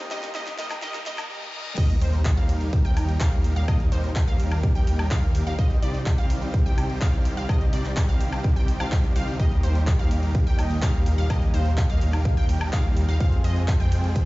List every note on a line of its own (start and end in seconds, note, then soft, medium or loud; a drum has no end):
0.00 1.27 C3 medium
0.00 1.27 F3 medium
0.00 0.10 G3 medium
0.00 0.11 A#3 medium
0.00 0.11 D#4 medium
0.00 1.27 F4 medium
0.00 0.12 G4 medium
0.00 riser medium
0.10 0.32 G3 medium
0.10 0.29 G3 loud
0.10 0.33 A#3 medium
0.10 0.29 A#3 medium
0.10 0.29 D#4 medium
0.10 0.33 D#4 medium
0.10 0.33 G4 medium
0.10 0.29 A#4 medium
0.10 0.29 D#5 loud
0.10 snare loud
0.10 open hi-hat loud
0.23 snare medium
0.23 closed hi-hat soft
0.34 0.56 G3 medium
0.34 0.53 G3 loud
0.34 0.56 A#3 medium
0.34 0.53 A#3 medium
0.34 0.53 D#4 medium
0.34 0.57 D#4 medium
0.34 0.57 G4 medium
0.34 0.53 A#4 medium
0.34 0.53 D#5 loud
0.34 snare loud
0.34 closed hi-hat medium
0.47 snare medium
0.47 closed hi-hat soft
0.57 0.80 G3 medium
0.57 0.77 G3 loud
0.57 0.80 A#3 medium
0.57 0.77 A#3 medium
0.57 0.77 D#4 medium
0.57 0.81 D#4 medium
0.57 0.81 G4 medium
0.57 0.77 A#4 medium
0.57 0.77 D#5 loud
0.57 snare loud
0.57 open hi-hat loud
0.70 snare medium
0.70 closed hi-hat soft
0.70 high woodblock medium
0.81 1.04 G3 medium
0.81 1.00 G3 loud
0.81 1.04 A#3 medium
0.81 1.00 A#3 medium
0.81 1.00 D#4 medium
0.81 1.05 D#4 medium
0.81 1.05 G4 medium
0.81 1.00 A#4 medium
0.81 1.00 D#5 loud
0.81 snare loud
0.81 closed hi-hat medium
0.81 reverse cymbal medium
0.94 snare medium
0.94 closed hi-hat soft
1.05 1.28 G3 medium
1.05 1.24 G3 loud
1.05 1.28 A#3 medium
1.05 1.24 A#3 medium
1.05 1.24 D#4 medium
1.05 1.28 D#4 medium
1.05 1.29 G4 medium
1.05 1.24 A#4 medium
1.05 1.24 D#5 loud
1.05 snare loud
1.05 open hi-hat loud
1.18 snare loud
1.18 closed hi-hat soft
1.18 high woodblock medium
1.30 1.48 G3 loud
1.30 1.48 A#3 medium
1.30 1.48 D#4 medium
1.30 1.48 A#4 medium
1.30 1.48 D#5 loud
1.54 1.72 G3 loud
1.54 1.72 A#3 medium
1.54 1.72 D#4 medium
1.54 1.72 A#4 medium
1.54 1.72 D#5 loud
1.78 1.99 D#2 loud
1.78 5.55 A#2 medium
1.78 13.17 D#3 medium
1.78 1.96 G3 medium
1.78 13.17 G3 medium
1.78 1.96 A#3 medium
1.78 1.96 D#4 medium
1.78 13.17 D#4 medium
1.78 13.17 G4 medium
1.78 1.96 A#4 medium
1.78 1.96 D#5 loud
1.78 kick loud
1.78 closed hi-hat loud
1.78 crash loud
1.78 impact medium
1.90 closed hi-hat soft
2.01 2.35 D#2 loud
2.01 2.19 G3 medium
2.01 2.19 A#3 medium
2.01 2.19 D#4 medium
2.01 2.19 A#4 medium
2.01 2.19 C5 medium
2.01 open hi-hat loud
2.13 closed hi-hat soft
2.25 kick loud
2.25 clap loud
2.25 closed hi-hat loud
2.37 2.82 D#2 loud
2.37 2.82 G3 medium
2.37 2.82 A#3 medium
2.37 2.82 D#4 medium
2.37 2.82 A#4 medium
2.37 2.82 F5 medium
2.37 closed hi-hat soft
2.49 open hi-hat loud
2.61 closed hi-hat soft
2.73 kick loud
2.73 closed hi-hat loud
2.85 3.18 D#2 loud
2.85 3.18 G3 medium
2.85 3.18 A#3 medium
2.85 3.18 D#4 medium
2.85 3.18 A#4 medium
2.85 3.18 G5 loud
2.85 closed hi-hat soft
2.97 open hi-hat loud
2.97 high woodblock medium
3.09 closed hi-hat soft
3.20 3.54 D#2 medium
3.20 3.53 G3 medium
3.20 3.53 A#3 medium
3.20 3.53 D#4 medium
3.20 3.53 A#4 medium
3.20 3.53 F5 loud
3.20 kick loud
3.20 clap loud
3.20 closed hi-hat loud
3.32 closed hi-hat soft
3.44 open hi-hat loud
3.56 3.66 D#2 loud
3.56 3.65 G3 medium
3.56 3.65 A#3 medium
3.56 3.65 D#4 medium
3.56 3.65 A#4 medium
3.56 3.65 F5 medium
3.56 closed hi-hat soft
3.68 3.90 D#2 loud
3.68 3.86 G3 loud
3.68 3.86 A#3 medium
3.68 3.86 D#4 medium
3.68 3.86 A#4 medium
3.68 3.86 D#5 loud
3.68 kick loud
3.68 closed hi-hat medium
3.68 high woodblock medium
3.80 closed hi-hat soft
3.92 4.25 D#2 loud
3.92 4.10 G3 medium
3.92 4.10 A#3 medium
3.92 4.10 D#4 medium
3.92 4.10 A#4 medium
3.92 4.10 C5 medium
3.92 open hi-hat loud
4.04 closed hi-hat soft
4.16 kick loud
4.16 clap loud
4.16 closed hi-hat medium
4.28 4.73 D#2 loud
4.28 4.72 G3 medium
4.28 4.72 A#3 medium
4.28 4.72 D#4 medium
4.28 4.72 A#4 medium
4.28 4.72 F5 loud
4.28 4.72 F5 medium
4.28 closed hi-hat soft
4.40 open hi-hat loud
4.52 closed hi-hat soft
4.52 high woodblock medium
4.63 kick loud
4.63 closed hi-hat loud
4.75 5.09 D#2 loud
4.75 5.08 G3 medium
4.75 5.08 A#3 medium
4.75 5.08 D#4 medium
4.75 5.08 A#4 medium
4.75 5.08 G5 loud
4.75 closed hi-hat soft
4.87 open hi-hat loud
4.99 closed hi-hat soft
4.99 high woodblock medium
5.11 5.44 D#2 medium
5.11 5.44 G3 medium
5.11 5.44 A#3 medium
5.11 5.44 D#4 medium
5.11 5.44 A#4 medium
5.11 5.44 F5 loud
5.11 kick loud
5.11 clap loud
5.11 closed hi-hat medium
5.23 closed hi-hat soft
5.35 open hi-hat loud
5.47 5.56 D#2 loud
5.47 5.56 G3 medium
5.47 5.56 A#3 medium
5.47 5.56 D#4 medium
5.47 5.56 A#4 medium
5.47 5.56 F5 medium
5.47 closed hi-hat soft
5.59 5.80 C2 loud
5.59 9.36 C3 medium
5.59 5.77 G3 medium
5.59 5.77 C4 medium
5.59 5.77 D#4 medium
5.59 5.77 C5 medium
5.59 5.77 D#5 loud
5.59 kick loud
5.59 closed hi-hat medium
5.71 closed hi-hat soft
5.82 6.16 C2 loud
5.82 6.00 G3 medium
5.82 6.00 C4 medium
5.82 6.00 D#4 medium
5.82 6.00 C5 medium
5.82 6.00 D5 medium
5.82 open hi-hat loud
5.94 closed hi-hat soft
6.06 kick loud
6.06 clap loud
6.06 closed hi-hat medium
6.18 6.63 C2 medium
6.18 6.63 G3 medium
6.18 6.63 C4 medium
6.18 6.63 D#4 medium
6.18 6.63 C5 medium
6.18 6.63 F5 medium
6.18 6.63 F5 loud
6.18 closed hi-hat soft
6.30 open hi-hat loud
6.42 closed hi-hat soft
6.54 kick loud
6.54 closed hi-hat medium
6.66 6.99 C2 loud
6.66 6.99 G3 medium
6.66 6.99 C4 medium
6.66 6.99 D#4 medium
6.66 6.99 C5 medium
6.66 6.99 G5 medium
6.66 6.99 G5 loud
6.66 closed hi-hat soft
6.78 open hi-hat loud
6.78 high woodblock medium
6.90 closed hi-hat soft
7.01 7.35 C2 medium
7.01 7.34 G3 loud
7.01 7.34 C4 medium
7.01 7.34 D#4 medium
7.01 7.34 C5 medium
7.01 7.34 F5 loud
7.01 kick loud
7.01 clap loud
7.01 closed hi-hat medium
7.13 closed hi-hat soft
7.25 open hi-hat loud
7.37 7.47 C2 loud
7.37 7.46 G3 medium
7.37 7.46 C4 medium
7.37 7.46 D#4 medium
7.37 7.46 C5 medium
7.37 7.46 F5 medium
7.37 closed hi-hat soft
7.49 7.71 C2 loud
7.49 7.67 G3 medium
7.49 7.67 C4 medium
7.49 7.67 D#4 medium
7.49 7.67 C5 medium
7.49 7.67 D#5 loud
7.49 kick loud
7.49 closed hi-hat medium
7.49 high woodblock medium
7.61 closed hi-hat soft
7.73 8.06 C2 loud
7.73 7.91 G3 medium
7.73 7.91 C4 medium
7.73 7.91 D#4 medium
7.73 7.91 C5 medium
7.73 7.91 D5 medium
7.73 open hi-hat loud
7.85 clap soft
7.85 closed hi-hat soft
7.97 kick loud
7.97 clap loud
7.97 closed hi-hat medium
8.09 8.54 C2 loud
8.09 8.53 G3 medium
8.09 8.53 C4 medium
8.09 8.53 D#4 medium
8.09 8.53 C5 medium
8.09 8.53 F5 medium
8.09 closed hi-hat soft
8.21 open hi-hat loud
8.32 closed hi-hat soft
8.32 high woodblock medium
8.44 kick loud
8.44 closed hi-hat medium
8.56 8.78 C2 loud
8.56 8.78 G3 medium
8.56 8.78 C4 medium
8.56 8.78 D#4 medium
8.56 8.78 C5 medium
8.56 8.78 G5 loud
8.56 closed hi-hat soft
8.68 open hi-hat loud
8.80 9.13 C2 loud
8.80 9.13 G3 medium
8.80 9.13 C4 medium
8.80 9.13 D#4 medium
8.80 9.13 C5 medium
8.80 9.13 F5 medium
8.80 closed hi-hat soft
8.80 high woodblock medium
8.92 kick loud
8.92 clap loud
8.92 closed hi-hat medium
9.04 closed hi-hat soft
9.16 9.37 C2 medium
9.16 9.37 G3 medium
9.16 9.37 C4 medium
9.16 9.37 D#4 medium
9.16 9.37 C5 medium
9.16 9.37 F5 loud
9.16 open hi-hat loud
9.28 closed hi-hat soft
9.38 9.61 D#2 loud
9.38 13.17 A#2 medium
9.38 10.79 G3 medium
9.38 9.58 G3 medium
9.38 10.79 A#3 medium
9.38 9.58 A#3 medium
9.38 9.58 D#4 medium
9.38 10.80 D#4 medium
9.38 10.80 G4 medium
9.38 9.58 A#4 medium
9.38 9.58 D#5 loud
9.38 kick loud
9.38 closed hi-hat medium
9.52 closed hi-hat soft
9.63 9.97 D#2 loud
9.63 9.81 G3 medium
9.63 9.81 A#3 medium
9.63 9.81 D#4 medium
9.63 9.81 A#4 medium
9.63 9.81 C5 medium
9.63 open hi-hat loud
9.75 closed hi-hat soft
9.87 kick loud
9.87 clap loud
9.87 closed hi-hat medium
9.99 10.44 D#2 loud
9.99 10.44 G3 medium
9.99 10.44 A#3 medium
9.99 10.44 D#4 medium
9.99 10.44 A#4 medium
9.99 10.44 F5 medium
9.99 closed hi-hat soft
10.11 open hi-hat loud
10.23 closed hi-hat soft
10.35 kick loud
10.35 closed hi-hat medium
10.47 10.80 D#2 loud
10.47 10.80 G3 medium
10.47 10.80 A#3 medium
10.47 10.80 D#4 medium
10.47 10.80 A#4 medium
10.47 10.80 G5 loud
10.47 closed hi-hat soft
10.59 10.76 D#5 loud
10.59 open hi-hat loud
10.59 high woodblock medium
10.71 closed hi-hat soft
10.82 11.16 D#2 medium
10.82 11.27 G3 medium
10.82 11.15 G3 loud
10.82 11.27 A#3 medium
10.82 11.15 A#3 medium
10.82 11.15 D#4 medium
10.82 11.27 D#4 medium
10.82 11.27 G4 medium
10.82 11.15 A#4 medium
10.82 11.15 F5 loud
10.82 kick loud
10.82 clap loud
10.82 closed hi-hat medium
10.94 closed hi-hat soft
11.06 open hi-hat loud
11.18 11.28 D#2 medium
11.18 11.27 G3 medium
11.18 11.27 A#3 medium
11.18 11.27 D#4 medium
11.18 11.27 A#4 medium
11.18 11.27 F5 medium
11.18 closed hi-hat soft
11.29 11.51 D#2 loud
11.29 12.69 G3 medium
11.29 11.48 G3 medium
11.29 12.70 A#3 medium
11.29 11.48 A#3 medium
11.29 11.48 D#4 medium
11.29 12.70 D#4 medium
11.29 12.71 G4 medium
11.29 11.48 A#4 medium
11.29 11.48 D#5 loud
11.29 kick loud
11.29 closed hi-hat medium
11.29 high woodblock medium
11.42 closed hi-hat soft
11.54 11.87 D#2 loud
11.54 11.72 G3 medium
11.54 11.72 A#3 medium
11.54 11.72 D#4 medium
11.54 11.72 A#4 medium
11.54 11.72 C5 medium
11.54 11.71 F5 medium
11.54 open hi-hat loud
11.66 closed hi-hat soft
11.77 kick loud
11.77 clap loud
11.77 closed hi-hat medium
11.89 12.35 D#2 loud
11.89 12.34 G3 medium
11.89 12.34 A#3 medium
11.89 12.34 D#4 medium
11.89 12.34 A#4 medium
11.89 12.07 D#5 medium
11.89 12.34 F5 medium
11.89 12.34 F5 loud
11.89 closed hi-hat soft
12.01 open hi-hat loud
12.13 closed hi-hat soft
12.13 high woodblock medium
12.25 12.33 F5 medium
12.25 kick loud
12.25 closed hi-hat medium
12.37 12.71 D#2 loud
12.37 12.70 G3 medium
12.37 12.70 A#3 medium
12.37 12.70 D#4 medium
12.37 12.70 A#4 medium
12.37 12.45 F5 medium
12.37 12.70 G5 loud
12.37 closed hi-hat soft
12.49 open hi-hat loud
12.61 closed hi-hat soft
12.61 high woodblock medium
12.72 13.06 D#2 loud
12.72 13.17 G3 medium
12.72 13.06 G3 medium
12.72 13.18 A#3 medium
12.72 13.06 A#3 medium
12.72 13.06 D#4 medium
12.72 13.18 D#4 medium
12.72 13.18 G4 medium
12.72 13.06 A#4 medium
12.72 13.06 F5 loud
12.72 kick loud
12.72 clap loud
12.72 closed hi-hat medium
12.85 closed hi-hat soft
12.97 open hi-hat loud
13.09 13.18 D#2 medium
13.09 13.18 G3 medium
13.09 13.18 A#3 medium
13.09 13.18 D#4 medium
13.09 13.18 A#4 medium
13.09 13.18 F5 medium
13.09 closed hi-hat soft
13.19 13.42 F2 loud
13.19 14.25 C3 medium
13.19 14.25 F3 medium
13.19 14.25 G#3 medium
13.19 13.38 G#3 medium
13.19 14.25 G#3 medium
13.19 14.25 C4 medium
13.19 13.38 C4 medium
13.19 13.38 F4 medium
13.19 14.25 F4 medium
13.19 14.25 G#4 medium
13.19 13.38 C5 medium
13.19 13.38 F5 loud
13.19 13.39 F5 loud
13.19 kick loud
13.19 closed hi-hat loud
13.32 closed hi-hat soft
13.44 13.78 F2 loud
13.44 13.62 G#3 medium
13.44 13.62 C4 medium
13.44 13.62 F4 medium
13.44 13.62 C5 medium
13.44 13.62 D#5 medium
13.44 open hi-hat loud
13.56 closed hi-hat soft
13.68 kick loud
13.68 clap loud
13.68 closed hi-hat medium
13.80 14.25 F2 loud
13.80 14.25 G#3 medium
13.80 14.25 C4 medium
13.80 14.25 F4 medium
13.80 14.25 C5 medium
13.80 14.25 G5 medium
13.80 14.25 G5 loud
13.80 closed hi-hat soft
13.92 open hi-hat loud
14.04 closed hi-hat soft
14.16 kick loud
14.16 closed hi-hat loud